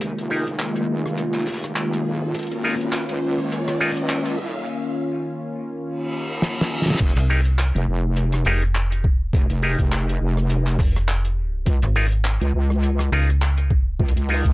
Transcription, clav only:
0.30 D#4 G4 G#4 A#4
2.64 D#4 F4 G#4 A#4
3.80 D#4 F4 G#4 A#4
7.30 D#4 G4 G#4 A#4
8.46 D#4 G4 G#4 A#4
9.63 D#4 G4 G#4 A#4
11.96 D#4 F4 G#4 A#4
13.13 D#4 F4 G#4 A#4
14.29 D#4 F4 G#4 A#4

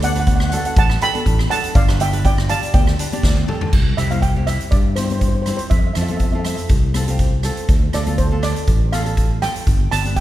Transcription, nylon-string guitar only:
0.16 D4 F#4 B4
0.52 D4 F#4 A4
1.01 D4 F#4 A4
1.14 D4 F#4 A4
1.51 D4 F#4 A4
1.89 D4 G4 B4
2.12 D4 G4 B4
2.49 D4 G4 D5
2.99 D4 G4 B4
3.12 D4 G4 D5
3.48 D4 G4 A4
3.98 C4 E4 G4
4.11 C4 E4 G4
4.36 C4 E4 G4
4.97 C4 E4 G4
5.11 C4 E4 G4
5.47 C4 E4 G4
5.96 C4 F4 A4
6.09 C4 F4 A4
6.34 C4 F4 A4
6.95 C4 F4 A4
7.08 C4 F4 G4
7.44 C4 F4 A4
7.93 D4 F4 A4
8.06 D4 F4 A4
8.31 D4 F4 A4
8.93 D4 F4 A4
9.05 D4 F4 A4
9.42 D4 F4 A4
9.93 D4 G4 B4
10.06 D4 G4 B4

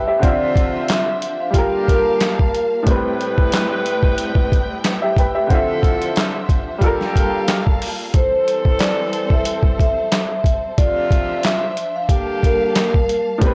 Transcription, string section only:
Already playing: G3 C4 A4 C5
0.22 F3 D4 C5 E5
1.55 G3 A#3 F5 A5
2.85 A3 C4 B4 G5
5.50 F3 D4 C5 E5
6.82 G3 A#3 F5 A5
8.14 G3 C4 A4 C5
10.77 F3 D4 C5 E5
12.10 G3 A#3 F5 A5
13.41 A3 C4 B4 G5

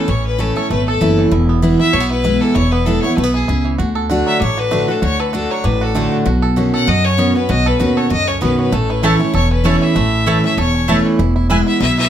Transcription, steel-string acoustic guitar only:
0.08 A2
0.38 E3 A3 C#4 E4
0.56 C#4 E4
0.71 E2
1.01 E3 A3 C#4 E4
1.31 E2
1.62 E3 G#3 B3 E4
1.80 B3 E4
1.93 B2
2.24 E3 G#3 B3 E4
2.55 E2
2.86 E3 G#3 B3 E4
3.04 B3 E4
3.18 B2
3.49 C#3
3.80 D3
4.10 D3 A3 D4 F#4
4.42 A2
4.71 D3 A3 D4 F#4
4.88 D4 F#4
5.03 D3
5.33 D3 A3 D4 F#4
5.64 A2
5.95 D3 A3 D4 F#4
6.26 B2
6.56 B2 D#3 C#4 F#4
6.87 F#2
7.18 B2 D#3 C#4 F#4
7.35 C#4 F#4
7.49 B2
7.80 B2 D#3 C#4 F#4
8.10 F#2
8.41 B2 D#3 C#4 F#4
8.72 A2
9.03 E3 A3 C#4 E4
9.19 C#4 E4
9.34 E2
9.64 E3 A3 C#4 E4
9.96 A2
10.26 E3 A3 C#4 E4
10.44 C#4 E4
10.58 E2
10.88 E3 A3 C#4 E4
11.19 E2
11.50 E3 G#3 B3 E4
11.80 B2

